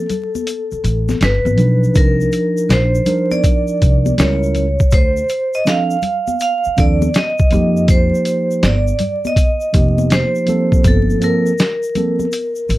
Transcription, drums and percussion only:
0.10 closed hi-hat medium
0.10 low conga soft
0.10 shaker soft
0.35 high conga soft
0.35 shaker soft
0.47 closed hi-hat medium
0.47 shaker medium
0.71 shaker soft
0.84 closed hi-hat medium
0.84 shaker soft
1.09 snare soft
1.09 high conga medium
1.09 shaker soft
1.21 snare loud
1.21 closed hi-hat medium
1.21 shaker medium
1.46 high conga medium
1.46 shaker soft
1.58 closed hi-hat medium
1.58 low conga medium
1.58 shaker soft
1.84 shaker soft
1.95 kick loud
1.95 closed hi-hat medium
1.95 shaker medium
2.21 shaker soft
2.32 closed hi-hat medium
2.32 shaker soft
2.57 shaker medium
2.70 snare loud
2.70 closed hi-hat medium
2.70 shaker medium
2.95 shaker soft
3.06 closed hi-hat medium
3.06 low conga medium
3.06 shaker soft
3.31 high conga soft
3.31 shaker soft
3.44 kick medium
3.44 closed hi-hat medium
3.44 shaker medium
3.68 shaker soft
3.82 kick medium
3.82 closed hi-hat medium
3.82 shaker soft
4.06 high conga medium
4.06 shaker soft
4.18 snare loud
4.18 closed hi-hat medium
4.18 shaker medium
4.43 shaker soft
4.55 closed hi-hat medium
4.55 low conga soft
4.55 shaker soft
4.80 kick medium
4.80 shaker soft
4.91 kick loud
4.91 closed hi-hat medium
4.91 shaker medium
5.17 shaker soft
5.29 closed hi-hat medium
5.29 shaker soft
5.54 shaker soft
5.66 snare medium
5.66 closed hi-hat medium
5.66 shaker medium
5.91 shaker soft
6.02 closed hi-hat medium
6.02 low conga soft
6.02 shaker soft
6.28 high conga soft
6.28 shaker medium
6.40 closed hi-hat medium
6.40 shaker medium
6.64 shaker soft
6.77 kick medium
6.77 closed hi-hat medium
6.77 shaker soft
7.02 high conga medium
7.02 shaker soft
7.14 snare loud
7.14 closed hi-hat medium
7.14 shaker medium
7.38 kick loud
7.38 shaker soft
7.51 closed hi-hat medium
7.51 low conga soft
7.51 shaker soft
7.77 shaker soft
7.88 kick loud
7.88 closed hi-hat medium
7.88 shaker medium
8.15 shaker soft
8.25 closed hi-hat medium
8.25 shaker soft
8.51 shaker soft
8.63 snare loud
8.63 closed hi-hat medium
8.63 shaker medium
8.87 shaker soft
8.99 closed hi-hat medium
8.99 low conga medium
8.99 shaker soft
9.25 high conga soft
9.25 shaker medium
9.36 kick medium
9.36 closed hi-hat medium
9.36 shaker medium
9.61 shaker soft
9.74 kick medium
9.74 closed hi-hat medium
9.74 shaker soft
9.98 high conga medium
9.98 shaker soft
10.10 snare loud
10.10 closed hi-hat medium
10.10 shaker medium
10.35 shaker soft
10.47 closed hi-hat soft
10.47 low conga soft
10.47 shaker soft
10.72 kick medium
10.72 shaker soft
10.84 kick loud
10.84 closed hi-hat medium
10.84 shaker medium
11.10 shaker soft
11.22 closed hi-hat medium
11.22 shaker soft
11.46 shaker medium
11.59 snare loud
11.59 closed hi-hat medium
11.59 shaker medium
11.83 shaker soft
11.95 closed hi-hat medium
11.95 low conga medium
11.95 shaker soft
12.20 high conga soft
12.20 shaker soft
12.32 closed hi-hat medium
12.32 shaker medium
12.55 shaker soft
12.69 closed hi-hat medium
12.69 shaker soft

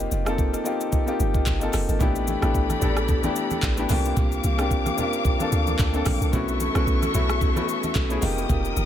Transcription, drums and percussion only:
0.00 shaker medium
0.12 shaker loud
0.26 cross-stick loud
0.26 shaker medium
0.38 kick loud
0.38 shaker medium
0.54 shaker medium
0.66 shaker loud
0.81 shaker soft
0.92 kick loud
0.92 shaker medium
1.08 shaker medium
1.20 shaker medium
1.34 kick loud
1.34 shaker medium
1.46 kick loud
1.46 clap medium
1.46 shaker medium
1.61 shaker soft
1.73 cross-stick medium
1.73 open hi-hat medium
1.73 shaker loud
1.89 shaker medium
2.00 kick loud
2.00 low conga medium
2.00 shaker medium
2.16 shaker medium
2.27 high conga medium
2.27 shaker loud
2.42 cross-stick loud
2.42 shaker medium
2.55 kick loud
2.55 shaker medium
2.70 high conga medium
2.70 shaker medium
2.82 low conga medium
2.82 shaker loud
2.97 cross-stick loud
2.97 shaker soft
3.08 kick loud
3.08 low conga medium
3.08 shaker medium
3.23 high conga medium
3.23 shaker medium
3.36 shaker medium
3.50 high conga medium
3.50 shaker medium
3.63 kick loud
3.63 clap medium
3.63 shaker medium
3.77 shaker soft
3.89 open hi-hat medium
3.89 high conga medium
3.89 low conga medium
3.89 shaker loud
4.05 shaker medium
4.17 kick loud
4.17 low conga medium
4.17 shaker medium
4.32 shaker medium
4.44 high conga medium
4.44 shaker loud
4.59 cross-stick loud
4.59 shaker medium
4.71 kick loud
4.71 shaker medium
4.86 high conga medium
4.86 shaker medium
4.98 low conga medium
4.98 shaker loud
5.13 shaker soft
5.25 kick loud
5.25 low conga medium
5.25 shaker medium
5.40 high conga medium
5.40 shaker medium
5.52 shaker medium
5.67 high conga medium
5.67 shaker soft
5.79 kick loud
5.79 clap medium
5.79 shaker medium
5.94 shaker soft
6.06 cross-stick medium
6.06 open hi-hat medium
6.06 high conga medium
6.06 low conga medium
6.06 shaker loud
6.22 shaker medium
6.33 kick loud
6.33 low conga medium
6.33 shaker medium
6.48 shaker medium
6.60 high conga medium
6.60 shaker loud
6.75 cross-stick loud
6.75 shaker medium
6.87 kick loud
6.87 shaker medium
7.02 high conga medium
7.02 shaker medium
7.14 low conga medium
7.14 shaker loud
7.29 cross-stick loud
7.29 shaker soft
7.41 kick loud
7.41 low conga medium
7.41 shaker medium
7.56 high conga medium
7.56 shaker medium
7.69 shaker medium
7.83 high conga medium
7.83 shaker medium
7.95 kick loud
7.95 clap medium
7.95 shaker medium
8.10 shaker soft
8.22 open hi-hat medium
8.22 high conga medium
8.22 low conga medium
8.22 shaker loud
8.38 shaker medium
8.49 kick loud
8.49 low conga medium
8.49 shaker medium
8.65 shaker medium
8.77 high conga medium
8.77 shaker loud

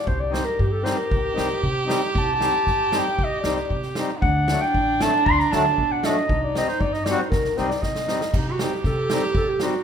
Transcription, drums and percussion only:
0.07 kick medium
0.34 snare medium
0.59 kick medium
0.86 snare medium
1.11 kick medium
1.37 snare medium
1.63 kick soft
1.90 snare medium
2.15 kick medium
2.41 snare medium
2.67 kick medium
2.67 snare soft
2.92 snare medium
3.19 kick medium
3.44 snare medium
3.70 kick medium
3.83 snare soft
3.95 snare medium
4.22 kick medium
4.48 snare loud
4.75 kick medium
5.01 snare loud
5.26 kick medium
5.40 snare soft
5.52 snare medium
5.78 kick soft
6.03 snare medium
6.29 kick medium
6.55 snare medium
6.69 snare soft
6.81 kick medium
6.94 snare soft
7.06 snare medium
7.32 kick medium
7.32 snare medium
7.45 snare soft
7.57 snare soft
7.71 snare medium
7.83 kick medium
7.83 snare medium
7.95 snare medium
8.08 snare medium
8.21 snare medium
8.34 kick medium
8.34 crash medium
8.59 snare medium
8.84 kick medium
8.84 snare soft
9.10 snare loud
9.35 kick medium
9.60 snare medium

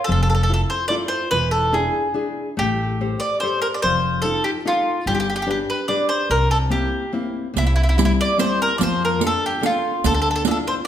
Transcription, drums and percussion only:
7.57 riq medium
7.99 riq medium
8.39 riq medium
8.81 riq medium
9.21 riq medium
9.63 riq medium
10.04 riq medium
10.45 riq medium

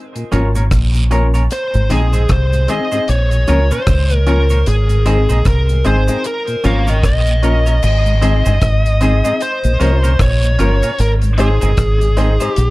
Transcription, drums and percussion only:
0.16 closed hi-hat medium
0.16 cabasa medium
0.32 closed hi-hat medium
0.32 cabasa medium
0.55 closed hi-hat soft
0.55 cabasa medium
0.71 kick loud
0.71 cross-stick loud
0.71 closed hi-hat medium
0.71 cabasa medium
0.71 long guiro medium
0.94 closed hi-hat medium
0.94 cabasa soft
1.11 closed hi-hat medium
1.11 cabasa medium
1.34 closed hi-hat medium
1.34 cabasa medium
1.51 closed hi-hat medium
1.51 cabasa medium
1.74 closed hi-hat soft
1.74 cabasa soft
1.90 closed hi-hat medium
1.90 cabasa medium
2.13 closed hi-hat medium
2.13 cabasa medium
2.29 kick loud
2.29 cross-stick loud
2.29 closed hi-hat medium
2.29 cabasa medium
2.53 closed hi-hat medium
2.53 cabasa soft
2.68 closed hi-hat medium
2.68 cabasa medium
2.92 closed hi-hat soft
2.92 cabasa medium
3.08 closed hi-hat medium
3.08 cabasa medium
3.31 closed hi-hat soft
3.31 cabasa soft
3.47 closed hi-hat medium
3.47 cabasa medium
3.71 closed hi-hat soft
3.71 cabasa medium
3.87 kick loud
3.87 cross-stick loud
3.87 closed hi-hat medium
3.87 cabasa medium
3.87 long guiro medium
4.10 closed hi-hat medium
4.10 cabasa soft
4.27 closed hi-hat medium
4.27 cabasa medium
4.50 closed hi-hat medium
4.50 cabasa medium
4.66 closed hi-hat medium
4.66 cabasa medium
4.89 closed hi-hat soft
4.89 cabasa soft
5.06 closed hi-hat medium
5.06 cabasa soft
5.29 closed hi-hat soft
5.29 cabasa medium
5.45 kick loud
5.45 cross-stick loud
5.45 closed hi-hat medium
5.45 cabasa medium
5.69 closed hi-hat medium
5.69 cabasa soft
5.84 closed hi-hat medium
5.84 cabasa medium
6.08 closed hi-hat medium
6.08 cabasa medium
6.24 closed hi-hat medium
6.24 cabasa medium
6.47 closed hi-hat soft
6.47 cabasa soft
6.64 closed hi-hat medium
6.64 cabasa medium
6.87 closed hi-hat medium
6.87 cabasa medium
7.03 kick loud
7.03 cross-stick loud
7.03 closed hi-hat medium
7.03 cabasa medium
7.03 long guiro medium
7.27 closed hi-hat medium
7.27 cabasa soft
7.43 closed hi-hat medium
7.43 cabasa medium
7.66 closed hi-hat medium
7.66 cabasa medium
7.83 crash medium
7.83 cabasa medium
8.06 closed hi-hat soft
8.06 cabasa soft
8.22 closed hi-hat medium
8.22 cabasa medium
8.46 closed hi-hat soft
8.46 cabasa medium
8.61 kick loud
8.61 cross-stick loud
8.61 closed hi-hat medium
8.61 cabasa medium
8.86 closed hi-hat medium
8.86 cabasa medium
9.01 closed hi-hat medium
9.01 cabasa medium
9.25 closed hi-hat medium
9.25 cabasa medium
9.40 closed hi-hat medium
9.40 cabasa medium
9.64 closed hi-hat soft
9.64 cabasa medium
9.80 closed hi-hat medium
9.80 cabasa soft
10.04 closed hi-hat soft
10.04 cabasa medium
10.19 kick loud
10.19 cross-stick loud
10.19 closed hi-hat medium
10.19 cabasa medium
10.19 long guiro medium
10.42 closed hi-hat medium
10.42 cabasa soft
10.59 closed hi-hat medium
10.59 cabasa medium
10.83 closed hi-hat medium
10.83 cabasa medium
10.99 closed hi-hat medium
10.99 cabasa medium
11.22 closed hi-hat soft
11.22 cabasa medium
11.38 closed hi-hat medium
11.38 cabasa medium
11.61 closed hi-hat medium
11.61 cabasa medium
11.77 kick loud
11.77 cross-stick loud
11.77 closed hi-hat medium
11.77 cabasa medium
12.01 closed hi-hat soft
12.01 cabasa medium
12.17 closed hi-hat medium
12.17 cabasa medium
12.40 closed hi-hat medium
12.40 cabasa medium
12.56 closed hi-hat medium
12.56 cabasa medium

